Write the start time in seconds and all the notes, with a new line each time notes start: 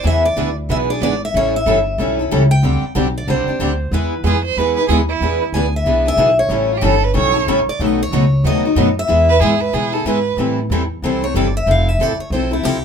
0.03 E2 E3 B3 D4 G#4 B4 E5
0.25 D5
0.36 D2 E3 B3 D4 G#4 B4
0.69 B1 E3 B3 D4 G#4 B4 E5
0.90 B3 D4 G#4 D5
1.02 G#1 E3 B3 D4 G#4 B4 D5
1.25 E5
1.34 A1 E3 G3 C#4 E4 A4 C#5
1.56 E5
1.66 G1 E3 G3 C#4 E4 A4
1.98 B1 E3 G3 C#4 E4 A4
2.19 C#4 E4 A4
2.31 C#2 E3 G3 C#4 E4 A4
2.51 G5
2.63 D2 D3 G3 C4 D4 G4
2.82 muted upright bass stroke
2.95 B1 D3 G3 C4 D4 G4
3.18 D5
3.27 C2 D3 G3 C4 D4 G4 C5
3.47 C4 D4 G4, muted upright bass stroke
3.59 D2 D3 G3 C4 D4 G4
3.91 E2 E3 G#3 B3 E4 G#4 B4
4.24 F2 E3 G#3 B3 E4 G#4
4.45 C5
4.57 E2 E3 G#3 B3 E4 G#4 B4
4.76 B3 E4 G#4 B4
4.88 D#2 E3 G#3 B3 E4 G#4
4.92 G#4
5.09 E4
5.20 E2 E3 B3 D4 G#4 B4
5.52 D2 E3 B3 D4 B4 G#5
5.57 G#4
5.76 E5
5.85 C2 E3 B3 D4 G#4 B4
6.06 B3 D4 G#4 E5
6.17 B1 E3 B3 D4 G#4 B4
6.39 C#5
6.49 A1 E3 G3 C#4 E4 A4
6.72 F4
6.77 G3 G4
6.81 G1 E3 C#4 E4 A4
7.04 B4
7.14 B1 E3 G3 C#4 E4 A4 C#5
7.34 C#4 E4 A4
7.47 A1 E3 G3 C#4 E4 A4
7.67 D5, muted upright bass stroke
7.79 B1 B2 D#3 F#3 A3 B3 D#4 F#4 A4
7.84 D#5
8.03 C#5
8.11 C#2 B2 D#3 F#3 A3 B3 D#4 F#4 A4
8.44 D#2 B2 D#3 F#3 A3 B3 D#4 F#4 A4 D#5
8.65 A3 D#4 F#4
8.76 F#2 B2 D#3 F#3 A3 B3 D#4 F#4 A4
8.99 E5
9.07 E2 E3 G#3 B3 E4 G#4
9.29 B4
9.41 G#2 E3 G#3 B3 E4 G#4
9.61 B4
9.73 B2 E3 G#3 B3 E4 G#4
9.92 B3 E4 G#4 A4
10.05 G#2 E3 G#3 B3 E4 G#4 B4
10.37 A2 E3 G3 C4 E4 A4
10.70 E2 E3 G3 C4 E4 A4
11.02 C2 E3 G3 C4 E4 A4 C5
11.22 C4 E4 A4 C#5
11.34 G1 E3 G3 C4 E4 A4 D5
11.57 E5
11.66 F1 F3 C4 E4 A4
11.71 F5
11.89 E5
11.99 A1 F3 C4 E4 A4 D5
12.18 C#5, muted upright bass stroke
12.30 B1 F3 C4 E4 A4 C5
12.51 C4 E4 A4
12.63 C2 F3 C4 E4 G4 A4